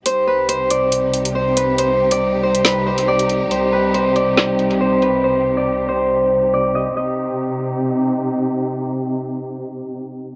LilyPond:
<<
  \new Staff \with { instrumentName = "Harp" } { \time 4/4 \key c \minor \tempo 4 = 139 c''8 b'8 c''8 d''4. c''8 b'8 | c''8. d''16 r8 c''8 b'8 c''8 d''8 r8 | c''8 b'8 c''8 d''4. c''8 b'8 | c''8. d''16 r8 c''4. d''8 ees''8 |
ees''2. r4 | r1 | }
  \new Staff \with { instrumentName = "String section" } { \time 4/4 \key c \minor << { <c, ees' g'>1~ | <c, ees' g'>1~ | <c, ees' g'>1~ | <c, ees' g'>1 |
<c c' ees' g'>1~ | <c c' ees' g'>1 | } \\ { c1~ | c1 | c1~ | c1 |
r1 | r1 | } >> }
  \new DrumStaff \with { instrumentName = "Drums" } \drummode { \time 4/4 hh4 hh8 hh8 hh8 hh16 hh16 r8 hh8 | hh8. hh16 r8. hh16 <hh sn>8. hh16 r16 hh16 hh8 | hh4 hh8 hh8 <hh sn>8 hh16 hh16 r8 hh8 | r4 r4 r4 r4 |
r4 r4 r4 r4 | r4 r4 r4 r4 | }
>>